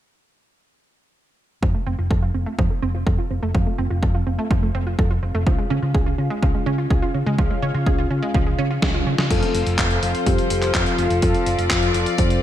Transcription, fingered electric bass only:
1.63 1.72 F2 medium
1.87 1.96 F1 medium
1.99 2.08 F1 medium
2.11 2.30 F2 medium
2.35 2.44 F1 medium
2.59 2.68 F2 medium
2.83 3.02 F1 medium
3.07 3.16 F2 medium
3.31 3.40 F1 medium
3.43 3.52 F1 medium
3.55 3.64 F2 medium
3.79 3.88 F1 medium
3.91 4.00 F1 loud
4.03 4.22 F2 medium
4.27 4.36 F1 medium
4.51 4.70 F2 medium
4.75 4.94 F1 medium
4.99 5.18 F2 medium
5.23 5.32 F1 medium
5.34 5.44 F1 medium
5.47 5.56 C#2 medium
5.71 5.80 C#3 medium
5.83 5.92 C#3 medium
5.95 6.14 C#2 medium
6.18 6.28 C#3 medium
6.43 6.52 C#2 medium
6.67 6.86 C#3 medium
6.91 7.00 C#2 medium
7.14 7.24 C#3 medium
7.26 7.36 C#3 medium
7.39 7.48 C#2 medium
7.62 7.72 C#3 medium
7.74 7.84 C#3 loud
7.86 8.06 C#2 medium
8.10 8.20 C#3 medium
8.35 8.54 C#2 medium
8.59 8.78 C#3 medium
8.82 9.02 C#2 medium
9.07 9.16 C#3 medium
9.19 9.28 C#3 medium
9.31 9.40 F2 medium
9.54 9.64 F1 medium
9.67 9.76 F1 loud
9.79 9.98 F2 medium
10.02 10.12 F1 medium
10.26 10.36 F2 medium
10.50 10.70 F1 medium
10.75 10.84 F2 medium
10.98 11.08 F1 medium
11.10 11.20 F1 medium
11.23 11.32 F2 medium
11.46 11.56 F1 medium
11.58 11.68 F1 loud
11.71 11.90 F2 medium
11.94 12.04 F1 medium
12.19 12.38 F2 medium

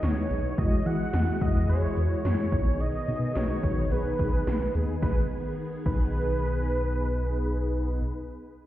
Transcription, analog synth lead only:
0.03 0.60 C#5 medium
0.58 0.88 D#5 loud
0.86 1.43 F#5 loud
1.41 1.69 D#5 loud
1.69 2.21 C#5 medium
2.25 2.82 C#5 medium
2.80 3.37 D#5 medium
3.36 3.93 C#5 medium
3.92 4.75 B4 medium
5.02 5.18 B4 medium
5.86 8.01 B4 loud

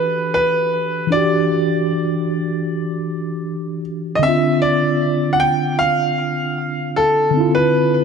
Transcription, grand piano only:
0.00 0.33 B4 medium
0.34 1.08 B4 medium
1.12 3.80 D5 medium
4.15 4.23 D#5 medium
4.23 4.59 E5 loud
4.62 5.29 D5 medium
5.33 5.40 F#5 medium
5.40 5.76 G5 medium
5.79 6.99 F5 loud
6.96 7.50 A4 medium
7.55 8.04 B4 medium

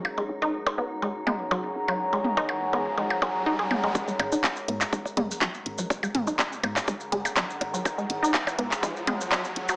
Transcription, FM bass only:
0.29 0.45 G#1 medium
0.78 0.93 G#2 medium
1.27 1.42 F#1 medium
1.76 1.91 G#1 medium
2.24 2.40 G#1 medium
2.73 2.89 G#2 medium
3.22 3.37 F#1 medium
3.71 3.86 G#1 medium
4.19 4.35 G#1 loud
4.68 4.84 G#2 medium
5.17 5.32 F#1 medium
5.66 5.81 G#1 medium
6.15 6.30 G#1 medium
6.63 6.79 G#2 medium
7.12 7.28 F#1 medium
7.61 7.76 G#1 medium
8.10 8.25 G#1 loud
8.59 8.74 G#2 medium
9.07 9.23 F#1 medium
9.56 9.72 G#1 medium

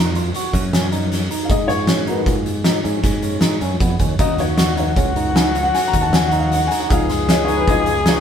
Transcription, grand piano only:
0.00 1.46 G#3 medium
0.00 1.46 A#3 soft
0.00 1.46 F4 medium
1.45 1.50 F5 medium
1.51 1.70 D#5 medium
1.68 2.04 C#5 loud
2.08 2.34 A#3 medium
2.08 2.34 B3 soft
2.08 2.34 F#4 medium
2.08 2.27 B4 medium
4.19 4.75 F#3 medium
4.19 4.75 C#4 soft
4.19 4.40 D#5 medium
4.19 4.75 F5 medium
4.40 4.78 C#5 medium
4.80 4.97 C#5 medium
5.36 5.62 G#5 medium
5.63 5.75 F#5 medium
5.74 5.88 G#5 medium
5.88 6.01 A#5 medium
6.02 6.14 A5 medium
6.15 6.27 G#5 medium
6.26 6.39 F#5 medium
6.40 6.51 F5 medium
6.54 6.59 F#5 medium
6.67 6.79 G#5 medium
6.80 6.92 F#5 medium
6.91 7.45 F3 medium
6.91 7.46 B3 soft
6.91 7.46 D#4 medium
6.91 7.31 F5 medium
7.31 7.43 D#5 medium
7.45 7.55 C#5 medium
7.56 7.69 B4 medium
7.69 7.86 F3 soft
7.69 7.86 B3 soft
7.69 7.86 D#4 soft
7.69 8.09 D#5 medium
8.09 8.20 C#5 medium

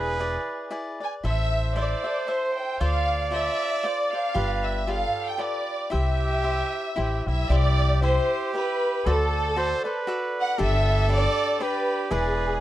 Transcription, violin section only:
0.00 0.69 G#4 medium
1.03 1.13 G#5 medium
1.26 1.74 E5 medium
1.79 2.30 D5 medium
2.30 2.58 C5 medium
2.57 2.81 G5 medium
2.79 3.28 F5 loud
3.34 3.85 E5 loud
3.85 4.13 D5 medium
4.14 4.65 F5 loud
4.65 4.88 E5 medium
4.89 5.28 F5 loud
5.28 5.40 G5 medium
5.41 5.92 D5 medium
5.92 7.22 E5 medium
7.27 7.49 E5 medium
7.50 8.02 D5 loud
8.03 8.51 C5 loud
8.55 9.07 B4 loud
9.09 10.09 A4 loud
10.41 10.60 F#5 loud
10.63 11.08 E5 loud
11.12 11.61 D5 loud
11.64 12.13 B4 loud
12.13 12.60 G#4 medium

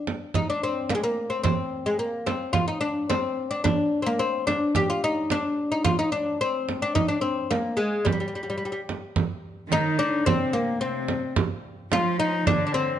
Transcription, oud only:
0.35 0.49 D#4 medium
0.50 0.63 D4 medium
0.63 0.91 C4 medium
0.90 0.94 A#3 medium
0.95 1.03 G#3 medium
1.04 1.32 A#3 medium
1.30 1.42 C4 medium
1.44 1.87 C4 medium
1.86 1.99 G#3 medium
1.99 2.28 A#3 medium
2.26 2.53 C4 medium
2.53 2.67 F4 medium
2.68 2.80 D#4 medium
2.81 3.09 D4 medium
3.10 3.50 C4 medium
3.51 3.63 D4 medium
3.64 4.02 D4 medium
4.02 4.06 C4 medium
4.06 4.21 A#3 medium
4.19 4.47 C4 medium
4.47 4.75 D4 medium
4.76 4.89 G4 loud
4.90 5.04 F4 medium
5.04 5.31 D#4 medium
5.32 5.71 D4 medium
5.72 5.84 D#4 medium
5.84 5.98 F4 medium
5.99 6.12 D#4 medium
6.12 6.41 D4 medium
6.41 6.82 C4 medium
6.82 6.95 D4 medium
6.95 7.08 D#4 medium
7.08 7.21 D4 medium
7.21 7.48 C4 medium
7.51 7.79 A#3 medium
7.77 8.06 G#3 medium
8.05 8.11 G3 medium
8.12 8.19 G3 soft
8.20 8.27 G3 soft
8.28 8.34 G3 soft
8.35 8.42 G3 soft
8.43 8.49 G3 soft
8.50 8.56 G3 medium
8.58 8.64 G3 soft
8.65 8.71 G3 soft
8.72 8.80 G3 soft
9.72 9.99 D#4 loud
9.99 10.26 D4 medium
10.26 10.55 C4 loud
10.53 10.80 A#3 medium
10.81 11.32 C4 medium
11.93 12.19 F4 loud
12.20 12.47 D#4 medium
12.47 12.65 D4 loud
12.67 12.74 D4 medium
12.74 12.99 C4 medium

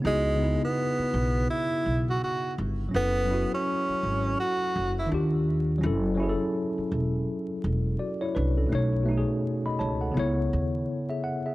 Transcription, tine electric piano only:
0.00 0.34 C#3 medium
0.00 0.35 B3 medium
0.04 0.36 D#4 medium
0.04 0.37 E4 medium
0.04 0.38 F#4 medium
0.36 1.64 C#3 medium
0.36 1.65 B3 medium
0.36 1.66 D#4 medium
0.42 1.67 E4 medium
0.42 1.68 G#4 medium
2.89 3.23 F#3 medium
2.89 3.24 C#4 medium
2.94 3.26 E4 medium
2.94 3.27 A4 medium
3.25 4.53 F#3 medium
3.25 4.55 C#4 medium
3.31 4.56 E4 medium
3.31 4.58 F#4 medium
5.06 5.72 D#3 medium
5.06 5.73 D4 medium
5.12 5.75 F4 medium
5.12 5.76 G4 medium
5.78 6.12 F#3 medium
5.78 6.14 C#4 medium
5.84 6.15 E4 medium
5.84 6.16 A4 medium
6.15 7.43 F#3 medium
6.15 7.44 C#4 medium
6.20 7.45 E4 medium
6.20 6.29 G#4 medium
6.29 7.50 A4 medium
7.99 8.21 F#4 soft
7.99 8.20 D5 medium
8.21 8.35 E4 medium
8.21 8.35 C#5 medium
8.35 8.57 D4 medium
8.35 8.56 B4 medium
8.57 8.92 C#4 medium
8.57 8.92 A4 medium
8.67 9.01 B2 medium
8.67 9.02 A3 medium
8.72 9.04 D#4 medium
8.72 9.05 C#5 medium
9.03 10.14 B2 medium
9.03 10.15 A3 medium
9.08 10.17 D#4 medium
9.08 9.17 F#4 medium
9.17 9.49 G#4 medium
9.66 9.79 D#5 soft
9.66 9.79 B5 medium
9.79 10.01 C#5 medium
9.79 10.01 A5 medium
10.01 10.36 A4 soft
10.01 10.36 F#5 medium
10.12 11.40 C#3 medium
10.12 11.41 B3 medium
10.17 11.43 E4 medium
10.17 10.90 C#5 loud
11.10 11.24 G#4 medium
11.10 11.23 E5 medium
11.24 11.45 F#5 medium
11.46 11.55 G#4 medium
11.46 11.55 E5 medium

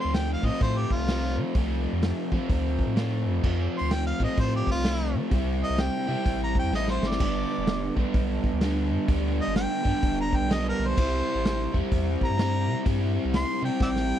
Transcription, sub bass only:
0.05 0.37 D2 medium
0.43 0.50 A2 medium
0.61 0.86 A2 loud
0.99 1.38 C2 medium
1.37 1.44 F3 loud
1.55 1.87 C2 medium
1.93 2.13 F2 loud
2.32 2.39 F3 medium
2.49 2.81 D2 loud
2.87 3.27 A2 medium
3.26 3.40 F2 loud
3.44 3.68 F2 loud
3.81 4.13 D2 medium
4.20 4.27 A2 medium
4.38 4.62 A2 medium
4.75 5.16 C2 medium
5.14 5.21 F3 medium
5.32 5.64 C2 loud
5.70 5.90 C2 medium
6.08 6.16 C3 medium
6.26 6.58 A1 medium
6.64 6.72 E2 medium
6.72 6.99 A1 medium
7.02 7.18 G1 medium
7.20 7.45 G1 loud
7.58 7.90 E1 medium
7.97 8.04 B1 medium
8.14 8.39 B1 medium
8.53 8.92 D2 medium
8.91 8.98 G2 loud
9.09 9.41 D2 loud
9.47 9.67 G1 medium
9.85 9.93 G2 medium
10.02 10.35 E1 loud
10.41 10.73 B1 medium
10.79 10.94 B1 loud
10.98 11.22 C2 medium
11.35 11.68 A1 medium
11.74 11.82 E2 medium
11.92 12.17 E2 medium
12.30 12.69 G2 medium
12.67 12.75 C3 loud
12.86 13.19 G2 loud
13.25 13.45 C2 medium
13.62 13.70 C3 medium
13.80 14.13 A1 loud

